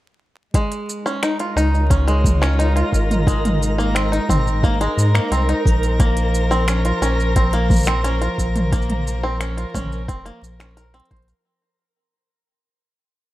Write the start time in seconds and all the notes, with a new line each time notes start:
0.54 G#3 A#4 A#5, kick, closed hi-hat, shaker
0.72 closed hi-hat, shaker
0.89 shaker
1.03 C#4 D#4, shaker
1.23 D#4, finger snap, closed hi-hat, shaker
1.39 F4, closed hi-hat, shaker
1.56 C#2 D#4, shaker
1.75 F4 C#5, shaker
1.90 C#4, kick, closed hi-hat, shaker
2.07 G#3, closed hi-hat, shaker
2.24 kick, mid tom, shaker
2.42 C#4, finger snap, shaker
2.59 D#4, closed hi-hat, shaker
2.76 F4, closed hi-hat, shaker
2.92 G#1, kick, shaker
3.11 closed hi-hat, mid tom, shaker
3.27 G#3, kick, closed hi-hat, shaker
3.45 closed hi-hat, mid tom, shaker
3.63 shaker
3.78 A#3, shaker
3.87 A#4
3.95 C4, finger snap, closed hi-hat, shaker
4.12 D#4, closed hi-hat, shaker
4.29 G#1 C4, kick, mid tom, shaker
4.47 C5, shaker
4.63 A#3, kick, shaker
4.81 G#3, closed hi-hat, shaker
4.97 G#2, shaker
5.14 A#3, finger snap, shaker
5.31 C2 C4, closed hi-hat, shaker
5.49 D#4, closed hi-hat, shaker
5.65 A#1, kick, shaker
5.83 closed hi-hat, shaker
6.00 F3 A#3, kick, closed hi-hat, shaker
6.17 closed hi-hat, shaker
6.34 shaker
6.51 C4, shaker
6.68 C#4, finger snap, closed hi-hat, shaker
6.85 F4, closed hi-hat, shaker
7.01 A#1 C#4, shaker
7.20 shaker
7.36 C4, kick, closed hi-hat, shaker
7.53 A#3, closed hi-hat, shaker
7.70 kick, mid tom, shaker
7.73 shaker
7.76 shaker
7.78 shaker
7.80 shaker
7.83 shaker
7.85 C4, finger snap, shaker
7.88 shaker
8.04 C#4, closed hi-hat, shaker
8.21 F4, closed hi-hat, shaker
8.38 A#1, kick, shaker
8.56 closed hi-hat, mid tom, shaker
8.72 A#3, kick, closed hi-hat, shaker
8.82 shaker
8.90 closed hi-hat, mid tom
9.07 shaker
9.23 C4
9.41 C#4, finger snap, closed hi-hat, shaker
9.57 F4, closed hi-hat, shaker
9.74 A#1 C#4, kick, mid tom, shaker
9.92 shaker
10.08 F1 C4, kick, closed hi-hat, shaker
10.25 A#3, closed hi-hat, shaker
10.42 A#1, shaker
10.60 C#4, finger snap, closed hi-hat, shaker
10.77 A#4, closed hi-hat, shaker
10.94 C4, closed hi-hat, shaker
11.00 closed hi-hat
11.05 closed hi-hat
11.11 A#1 C5, kick, closed hi-hat
11.16 closed hi-hat
11.22 closed hi-hat
11.28 closed hi-hat, shaker